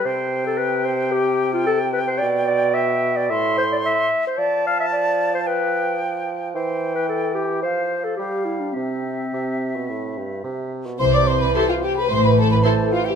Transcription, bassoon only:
X:1
M:4/4
L:1/16
Q:1/4=110
K:C
V:1 name="Bassoon" clef=bass
C,16 | B,,8 A,,6 z2 | F,16 | E,8 F,4 G,4 |
C,4 C,3 B,, A,,2 G,,2 C,3 B,, | E,8 E,4 E,4 |]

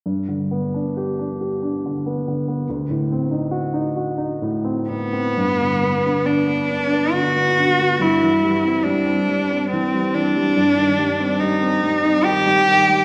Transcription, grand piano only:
X:1
M:3/4
L:1/16
Q:1/4=70
K:G
V:1 name="Grand piano" clef=bass
G,, D, B, D G D G D D, B, D, B, | D,, A,, C _E F E F E A,, C A,, C | G,, D, B, D, D B, D B, D, B, D, B, | G,, E, G, C G, C G, C E, G, E, G, |
G,, _E, G, C G, C G, C E, G, E, G, |]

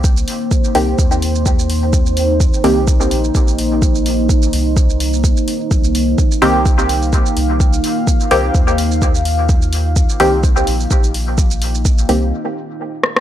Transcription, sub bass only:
X:1
M:4/4
L:1/8
Q:"Swing 16ths" 1/4=127
K:Cm
V:1 name="Sub bass" clef=bass
C,, z2 C,, E,,4- | E,,2 z C,,2 B,,, B,,,2- | B,,,3 C,,3 z2 | C,,2 z C,,3 z C,,- |
C,, z2 C,, E,,4- | E,,2 z C,,2 B,,, B,,,2- | B,,,3 C,, z4 |]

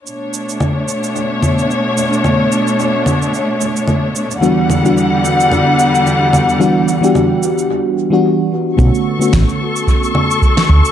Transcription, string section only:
X:1
M:4/4
L:1/8
Q:"Swing 16ths" 1/4=110
K:Bm
V:1 name="String section"
[B,,A,Dc]8- | [B,,A,Dc]8 | [E,,D,G,f]8- | [E,,D,G,f]4 z4 |
[Ac']8 |]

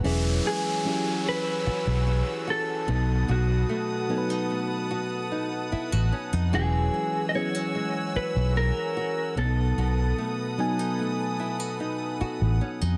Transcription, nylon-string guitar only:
X:1
M:4/4
L:1/16
Q:1/4=74
K:Elyd
V:1 name="Nylon-string guitar"
[E,F]2 G,2 C4 F2 C2 F2 B,,2 | [B,,F]2 =A,2 C D A,2 F2 D2 E F C D | [E,F]2 G,2 B, C G,2 F2 C2 F2 B,,2 | [B,,F]2 =A,2 C D A,2 E F D2 F2 C D |]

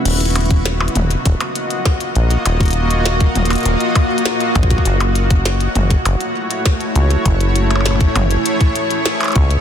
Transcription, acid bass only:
X:1
M:4/4
L:1/8
Q:1/4=100
K:Gb
V:1 name="Acid bass" clef=bass
E,,,3 E,,, E,,, z2 B,,, | E,,,3 E,,, E,,, z2 B,,, | G,,,3 G,,, G,,, z2 D,, | G,,,3 G,,, z3 D,, |]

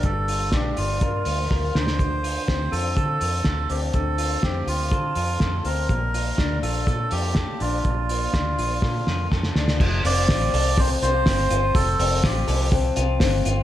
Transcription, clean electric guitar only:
X:1
M:4/4
L:1/8
Q:1/4=123
K:F
V:1 name="Clean electric guitar"
[G,DF] F D F B F B D, | D, F C F A F A C | D, F C F A F A C | B,, F D F A F A D |
B,, F D F A F A D | F, C F A C F C F | F, C F A C F C F |]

